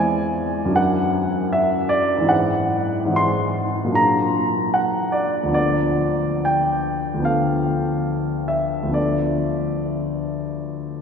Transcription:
Already playing: E2 G#3 C4 E4 C5 D5 G#5
0.65 F#2 F#3
0.70 D4 E4
0.76 A#4 F#5
1.53 E5
1.89 D5
2.17 G#2 E3
2.23 C4 E4
2.28 G#4 F#5
3.05 G#2 E3
3.10 C4 E4
3.16 G#4 C6
3.84 A#2 F#3
3.90 A#3 D4
3.95 G#4 A#5
4.74 F#5
5.12 D5
5.43 D2 F3
5.48 B3 D4
5.54 A4 D5
6.45 G5
7.14 D2 F3
7.19 B3 D4
7.25 A4 F5
8.48 E5
8.83 D2 F3
8.88 B3 D4
8.94 A4 D5

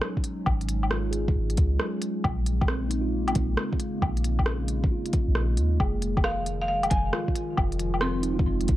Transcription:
Already playing: F#3 G#3 C#4 D#4
0.02 cross-stick
0.17 kick
0.24 closed hi-hat
0.46 G#1, kick, low woodblock
0.61 closed hi-hat
0.69 closed hi-hat
0.83 low woodblock
0.91 F4, cross-stick
1.11 G#4, closed hi-hat
1.28 kick
1.36 G#1
1.50 closed hi-hat
1.57 C#2, kick, closed hi-hat
1.80 cross-stick
2.02 closed hi-hat
2.24 A#1 C#3 A#3, kick, low woodblock
2.46 closed hi-hat
2.61 kick, low woodblock
2.68 C4, cross-stick
2.89 D#4, closed hi-hat
3.01 F4
3.28 closed hi-hat, low woodblock
3.35 A#1, kick, closed hi-hat
3.57 cross-stick
3.73 kick
3.80 closed hi-hat
4.02 A#1, kick, low woodblock
4.17 closed hi-hat
4.24 closed hi-hat
4.39 kick, low woodblock
4.46 C#4, cross-stick
4.68 closed hi-hat
4.84 kick
4.92 F4
5.06 closed hi-hat
5.13 kick, closed hi-hat
5.28 A#1
5.35 cross-stick
5.57 D#2, closed hi-hat
5.79 F1 D#3 F3 G#4, kick, low woodblock
6.02 closed hi-hat
6.17 kick, low woodblock
6.24 F5, cross-stick
6.46 closed hi-hat
6.62 F5
6.68 F5
6.83 closed hi-hat, low woodblock
6.90 F1 G#5, kick, closed hi-hat
7.13 F4, cross-stick
7.28 kick
7.35 closed hi-hat
7.57 F1, kick, low woodblock
7.72 closed hi-hat
7.79 closed hi-hat
7.94 low woodblock
8.01 C4 C6, cross-stick
8.22 D#4, closed hi-hat
8.34 F4
8.39 kick
8.46 F1
8.61 closed hi-hat
8.68 G#1, kick, closed hi-hat

